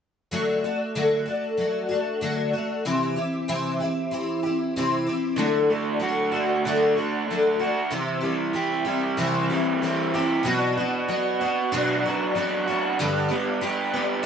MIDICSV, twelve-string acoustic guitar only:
0, 0, Header, 1, 2, 480
1, 0, Start_track
1, 0, Tempo, 633580
1, 231, Time_signature, 4, 2, 24, 8
1, 10801, End_track
2, 0, Start_track
2, 0, Title_t, "Twelve-string acoustic guitar"
2, 0, Program_c, 0, 25
2, 237, Note_on_c, 0, 54, 68
2, 241, Note_on_c, 0, 50, 65
2, 246, Note_on_c, 0, 57, 76
2, 247, Note_on_c, 0, 62, 80
2, 256, Note_on_c, 0, 66, 81
2, 475, Note_off_c, 0, 54, 0
2, 477, Note_off_c, 0, 50, 0
2, 477, Note_off_c, 0, 66, 0
2, 479, Note_off_c, 0, 57, 0
2, 480, Note_off_c, 0, 62, 0
2, 486, Note_on_c, 0, 66, 54
2, 498, Note_on_c, 0, 62, 45
2, 500, Note_on_c, 0, 57, 41
2, 718, Note_off_c, 0, 62, 0
2, 720, Note_off_c, 0, 66, 0
2, 722, Note_on_c, 0, 50, 79
2, 723, Note_off_c, 0, 57, 0
2, 727, Note_on_c, 0, 54, 74
2, 727, Note_on_c, 0, 62, 83
2, 732, Note_on_c, 0, 57, 77
2, 733, Note_on_c, 0, 66, 80
2, 943, Note_off_c, 0, 66, 0
2, 952, Note_on_c, 0, 66, 52
2, 958, Note_off_c, 0, 50, 0
2, 958, Note_off_c, 0, 62, 0
2, 961, Note_off_c, 0, 54, 0
2, 963, Note_off_c, 0, 57, 0
2, 967, Note_on_c, 0, 62, 49
2, 976, Note_on_c, 0, 57, 42
2, 1193, Note_off_c, 0, 66, 0
2, 1193, Note_on_c, 0, 54, 58
2, 1196, Note_off_c, 0, 57, 0
2, 1201, Note_off_c, 0, 62, 0
2, 1205, Note_on_c, 0, 57, 56
2, 1211, Note_on_c, 0, 62, 58
2, 1218, Note_on_c, 0, 66, 61
2, 1420, Note_off_c, 0, 66, 0
2, 1429, Note_on_c, 0, 66, 50
2, 1434, Note_off_c, 0, 54, 0
2, 1436, Note_off_c, 0, 62, 0
2, 1440, Note_off_c, 0, 57, 0
2, 1445, Note_on_c, 0, 62, 44
2, 1459, Note_on_c, 0, 57, 42
2, 1672, Note_off_c, 0, 66, 0
2, 1675, Note_on_c, 0, 50, 73
2, 1676, Note_off_c, 0, 57, 0
2, 1677, Note_off_c, 0, 62, 0
2, 1683, Note_on_c, 0, 54, 69
2, 1685, Note_on_c, 0, 57, 79
2, 1686, Note_on_c, 0, 62, 79
2, 1691, Note_on_c, 0, 66, 81
2, 1910, Note_off_c, 0, 66, 0
2, 1916, Note_off_c, 0, 50, 0
2, 1919, Note_on_c, 0, 66, 48
2, 1920, Note_off_c, 0, 54, 0
2, 1920, Note_off_c, 0, 57, 0
2, 1921, Note_off_c, 0, 62, 0
2, 1934, Note_on_c, 0, 62, 49
2, 1952, Note_on_c, 0, 57, 45
2, 2158, Note_off_c, 0, 66, 0
2, 2160, Note_off_c, 0, 57, 0
2, 2160, Note_on_c, 0, 48, 75
2, 2163, Note_on_c, 0, 60, 81
2, 2164, Note_on_c, 0, 52, 74
2, 2165, Note_off_c, 0, 62, 0
2, 2169, Note_on_c, 0, 64, 84
2, 2181, Note_on_c, 0, 67, 85
2, 2385, Note_off_c, 0, 67, 0
2, 2394, Note_on_c, 0, 67, 48
2, 2396, Note_off_c, 0, 64, 0
2, 2398, Note_off_c, 0, 48, 0
2, 2400, Note_off_c, 0, 52, 0
2, 2400, Note_off_c, 0, 60, 0
2, 2405, Note_on_c, 0, 64, 47
2, 2414, Note_on_c, 0, 60, 45
2, 2633, Note_off_c, 0, 64, 0
2, 2636, Note_off_c, 0, 67, 0
2, 2637, Note_on_c, 0, 48, 74
2, 2638, Note_off_c, 0, 60, 0
2, 2642, Note_on_c, 0, 52, 74
2, 2642, Note_on_c, 0, 64, 84
2, 2644, Note_on_c, 0, 67, 93
2, 2648, Note_on_c, 0, 60, 85
2, 2872, Note_off_c, 0, 67, 0
2, 2877, Note_off_c, 0, 48, 0
2, 2880, Note_off_c, 0, 52, 0
2, 2880, Note_off_c, 0, 64, 0
2, 2881, Note_on_c, 0, 67, 46
2, 2883, Note_off_c, 0, 60, 0
2, 2894, Note_on_c, 0, 64, 46
2, 2910, Note_on_c, 0, 60, 46
2, 3115, Note_on_c, 0, 52, 60
2, 3119, Note_off_c, 0, 60, 0
2, 3119, Note_off_c, 0, 67, 0
2, 3120, Note_off_c, 0, 64, 0
2, 3128, Note_on_c, 0, 60, 64
2, 3129, Note_on_c, 0, 64, 56
2, 3135, Note_on_c, 0, 67, 61
2, 3347, Note_off_c, 0, 67, 0
2, 3356, Note_on_c, 0, 67, 45
2, 3357, Note_off_c, 0, 52, 0
2, 3363, Note_off_c, 0, 60, 0
2, 3363, Note_off_c, 0, 64, 0
2, 3378, Note_on_c, 0, 64, 43
2, 3385, Note_on_c, 0, 60, 35
2, 3597, Note_off_c, 0, 67, 0
2, 3608, Note_off_c, 0, 64, 0
2, 3608, Note_on_c, 0, 48, 74
2, 3610, Note_off_c, 0, 60, 0
2, 3611, Note_on_c, 0, 52, 80
2, 3619, Note_on_c, 0, 60, 79
2, 3622, Note_on_c, 0, 64, 72
2, 3625, Note_on_c, 0, 67, 79
2, 3828, Note_off_c, 0, 67, 0
2, 3837, Note_on_c, 0, 67, 50
2, 3843, Note_off_c, 0, 48, 0
2, 3845, Note_off_c, 0, 52, 0
2, 3845, Note_off_c, 0, 64, 0
2, 3848, Note_off_c, 0, 60, 0
2, 3854, Note_on_c, 0, 64, 46
2, 3859, Note_on_c, 0, 60, 44
2, 4062, Note_on_c, 0, 50, 80
2, 4072, Note_off_c, 0, 60, 0
2, 4073, Note_on_c, 0, 54, 81
2, 4075, Note_on_c, 0, 57, 76
2, 4077, Note_off_c, 0, 67, 0
2, 4080, Note_off_c, 0, 64, 0
2, 4080, Note_on_c, 0, 66, 81
2, 4083, Note_on_c, 0, 62, 75
2, 4309, Note_off_c, 0, 66, 0
2, 4310, Note_off_c, 0, 50, 0
2, 4316, Note_off_c, 0, 54, 0
2, 4317, Note_off_c, 0, 57, 0
2, 4318, Note_on_c, 0, 66, 55
2, 4321, Note_off_c, 0, 62, 0
2, 4334, Note_on_c, 0, 62, 51
2, 4340, Note_on_c, 0, 57, 46
2, 4542, Note_on_c, 0, 54, 61
2, 4543, Note_off_c, 0, 57, 0
2, 4552, Note_on_c, 0, 57, 61
2, 4554, Note_off_c, 0, 62, 0
2, 4554, Note_off_c, 0, 66, 0
2, 4563, Note_on_c, 0, 62, 60
2, 4563, Note_on_c, 0, 66, 63
2, 4777, Note_off_c, 0, 66, 0
2, 4786, Note_on_c, 0, 66, 56
2, 4790, Note_off_c, 0, 54, 0
2, 4793, Note_off_c, 0, 62, 0
2, 4795, Note_off_c, 0, 57, 0
2, 4802, Note_on_c, 0, 62, 47
2, 4817, Note_on_c, 0, 57, 42
2, 5032, Note_off_c, 0, 66, 0
2, 5039, Note_on_c, 0, 50, 73
2, 5040, Note_off_c, 0, 62, 0
2, 5042, Note_off_c, 0, 57, 0
2, 5051, Note_on_c, 0, 57, 87
2, 5052, Note_on_c, 0, 54, 77
2, 5058, Note_on_c, 0, 66, 79
2, 5059, Note_on_c, 0, 62, 77
2, 5272, Note_off_c, 0, 66, 0
2, 5279, Note_off_c, 0, 50, 0
2, 5281, Note_on_c, 0, 66, 56
2, 5285, Note_off_c, 0, 54, 0
2, 5285, Note_off_c, 0, 57, 0
2, 5286, Note_off_c, 0, 62, 0
2, 5295, Note_on_c, 0, 62, 45
2, 5309, Note_on_c, 0, 57, 41
2, 5519, Note_off_c, 0, 66, 0
2, 5526, Note_off_c, 0, 62, 0
2, 5529, Note_off_c, 0, 57, 0
2, 5533, Note_on_c, 0, 54, 58
2, 5538, Note_on_c, 0, 57, 57
2, 5547, Note_on_c, 0, 62, 64
2, 5551, Note_on_c, 0, 66, 72
2, 5744, Note_off_c, 0, 66, 0
2, 5753, Note_on_c, 0, 66, 53
2, 5756, Note_off_c, 0, 62, 0
2, 5765, Note_on_c, 0, 62, 52
2, 5766, Note_off_c, 0, 54, 0
2, 5768, Note_off_c, 0, 57, 0
2, 5780, Note_on_c, 0, 57, 47
2, 5988, Note_on_c, 0, 48, 79
2, 5991, Note_off_c, 0, 57, 0
2, 5994, Note_on_c, 0, 60, 81
2, 5996, Note_off_c, 0, 66, 0
2, 5997, Note_on_c, 0, 52, 78
2, 5999, Note_off_c, 0, 62, 0
2, 6002, Note_on_c, 0, 64, 83
2, 6006, Note_on_c, 0, 67, 81
2, 6207, Note_off_c, 0, 67, 0
2, 6216, Note_on_c, 0, 67, 56
2, 6222, Note_off_c, 0, 64, 0
2, 6231, Note_on_c, 0, 64, 49
2, 6233, Note_off_c, 0, 48, 0
2, 6236, Note_off_c, 0, 60, 0
2, 6237, Note_off_c, 0, 52, 0
2, 6249, Note_on_c, 0, 60, 46
2, 6463, Note_off_c, 0, 60, 0
2, 6465, Note_on_c, 0, 52, 60
2, 6467, Note_off_c, 0, 67, 0
2, 6472, Note_on_c, 0, 60, 66
2, 6474, Note_off_c, 0, 64, 0
2, 6483, Note_on_c, 0, 64, 69
2, 6486, Note_on_c, 0, 67, 68
2, 6692, Note_off_c, 0, 67, 0
2, 6702, Note_on_c, 0, 67, 57
2, 6707, Note_off_c, 0, 64, 0
2, 6711, Note_off_c, 0, 52, 0
2, 6714, Note_off_c, 0, 60, 0
2, 6716, Note_on_c, 0, 64, 52
2, 6731, Note_on_c, 0, 60, 45
2, 6948, Note_on_c, 0, 48, 76
2, 6949, Note_off_c, 0, 60, 0
2, 6949, Note_off_c, 0, 67, 0
2, 6952, Note_off_c, 0, 64, 0
2, 6954, Note_on_c, 0, 52, 85
2, 6958, Note_on_c, 0, 60, 83
2, 6961, Note_on_c, 0, 64, 84
2, 6970, Note_on_c, 0, 67, 91
2, 7186, Note_off_c, 0, 67, 0
2, 7192, Note_off_c, 0, 48, 0
2, 7195, Note_off_c, 0, 52, 0
2, 7195, Note_on_c, 0, 67, 52
2, 7197, Note_off_c, 0, 60, 0
2, 7199, Note_off_c, 0, 64, 0
2, 7207, Note_on_c, 0, 64, 48
2, 7217, Note_on_c, 0, 60, 44
2, 7435, Note_off_c, 0, 67, 0
2, 7439, Note_off_c, 0, 60, 0
2, 7439, Note_on_c, 0, 52, 56
2, 7441, Note_off_c, 0, 64, 0
2, 7448, Note_on_c, 0, 60, 65
2, 7458, Note_on_c, 0, 64, 62
2, 7461, Note_on_c, 0, 67, 64
2, 7672, Note_off_c, 0, 67, 0
2, 7677, Note_off_c, 0, 52, 0
2, 7680, Note_off_c, 0, 64, 0
2, 7681, Note_on_c, 0, 67, 58
2, 7682, Note_off_c, 0, 60, 0
2, 7689, Note_on_c, 0, 64, 49
2, 7704, Note_on_c, 0, 60, 42
2, 7902, Note_on_c, 0, 47, 73
2, 7912, Note_off_c, 0, 60, 0
2, 7915, Note_on_c, 0, 54, 76
2, 7915, Note_on_c, 0, 59, 81
2, 7918, Note_off_c, 0, 67, 0
2, 7922, Note_off_c, 0, 64, 0
2, 7924, Note_on_c, 0, 66, 90
2, 7927, Note_on_c, 0, 62, 81
2, 8148, Note_off_c, 0, 47, 0
2, 8152, Note_off_c, 0, 66, 0
2, 8155, Note_off_c, 0, 54, 0
2, 8155, Note_off_c, 0, 59, 0
2, 8161, Note_off_c, 0, 62, 0
2, 8161, Note_on_c, 0, 66, 55
2, 8182, Note_on_c, 0, 62, 52
2, 8183, Note_on_c, 0, 59, 49
2, 8396, Note_off_c, 0, 59, 0
2, 8396, Note_on_c, 0, 54, 60
2, 8397, Note_off_c, 0, 66, 0
2, 8405, Note_on_c, 0, 59, 60
2, 8408, Note_off_c, 0, 62, 0
2, 8416, Note_on_c, 0, 62, 60
2, 8418, Note_on_c, 0, 66, 66
2, 8634, Note_off_c, 0, 66, 0
2, 8635, Note_off_c, 0, 54, 0
2, 8639, Note_off_c, 0, 59, 0
2, 8643, Note_on_c, 0, 66, 55
2, 8644, Note_off_c, 0, 62, 0
2, 8660, Note_on_c, 0, 62, 49
2, 8674, Note_on_c, 0, 59, 45
2, 8878, Note_off_c, 0, 66, 0
2, 8878, Note_on_c, 0, 47, 80
2, 8884, Note_off_c, 0, 59, 0
2, 8884, Note_on_c, 0, 54, 80
2, 8886, Note_off_c, 0, 62, 0
2, 8893, Note_on_c, 0, 59, 79
2, 8894, Note_on_c, 0, 66, 91
2, 8895, Note_on_c, 0, 62, 83
2, 9115, Note_off_c, 0, 47, 0
2, 9118, Note_off_c, 0, 54, 0
2, 9123, Note_off_c, 0, 59, 0
2, 9123, Note_off_c, 0, 66, 0
2, 9124, Note_off_c, 0, 62, 0
2, 9132, Note_on_c, 0, 66, 53
2, 9153, Note_on_c, 0, 62, 48
2, 9157, Note_on_c, 0, 59, 47
2, 9356, Note_on_c, 0, 54, 60
2, 9357, Note_off_c, 0, 59, 0
2, 9362, Note_off_c, 0, 62, 0
2, 9362, Note_off_c, 0, 66, 0
2, 9366, Note_on_c, 0, 59, 60
2, 9371, Note_on_c, 0, 62, 60
2, 9379, Note_on_c, 0, 66, 71
2, 9594, Note_off_c, 0, 54, 0
2, 9594, Note_off_c, 0, 66, 0
2, 9598, Note_off_c, 0, 59, 0
2, 9601, Note_off_c, 0, 62, 0
2, 9603, Note_on_c, 0, 66, 59
2, 9616, Note_on_c, 0, 62, 51
2, 9624, Note_on_c, 0, 59, 48
2, 9836, Note_off_c, 0, 66, 0
2, 9842, Note_on_c, 0, 43, 78
2, 9843, Note_off_c, 0, 62, 0
2, 9846, Note_on_c, 0, 50, 82
2, 9847, Note_off_c, 0, 59, 0
2, 9851, Note_on_c, 0, 55, 77
2, 9852, Note_on_c, 0, 62, 81
2, 9858, Note_on_c, 0, 59, 80
2, 9862, Note_on_c, 0, 67, 84
2, 10055, Note_off_c, 0, 67, 0
2, 10065, Note_off_c, 0, 62, 0
2, 10065, Note_on_c, 0, 67, 53
2, 10074, Note_on_c, 0, 62, 52
2, 10075, Note_off_c, 0, 43, 0
2, 10078, Note_off_c, 0, 50, 0
2, 10080, Note_off_c, 0, 55, 0
2, 10080, Note_off_c, 0, 59, 0
2, 10089, Note_on_c, 0, 59, 52
2, 10095, Note_on_c, 0, 55, 44
2, 10303, Note_off_c, 0, 55, 0
2, 10307, Note_off_c, 0, 67, 0
2, 10311, Note_off_c, 0, 59, 0
2, 10311, Note_off_c, 0, 62, 0
2, 10312, Note_on_c, 0, 55, 59
2, 10320, Note_on_c, 0, 59, 59
2, 10324, Note_on_c, 0, 62, 66
2, 10328, Note_on_c, 0, 67, 68
2, 10548, Note_off_c, 0, 67, 0
2, 10550, Note_off_c, 0, 55, 0
2, 10550, Note_off_c, 0, 62, 0
2, 10554, Note_off_c, 0, 59, 0
2, 10557, Note_on_c, 0, 67, 52
2, 10560, Note_on_c, 0, 62, 47
2, 10569, Note_on_c, 0, 59, 46
2, 10579, Note_on_c, 0, 55, 47
2, 10777, Note_off_c, 0, 55, 0
2, 10783, Note_off_c, 0, 67, 0
2, 10784, Note_off_c, 0, 59, 0
2, 10787, Note_off_c, 0, 62, 0
2, 10801, End_track
0, 0, End_of_file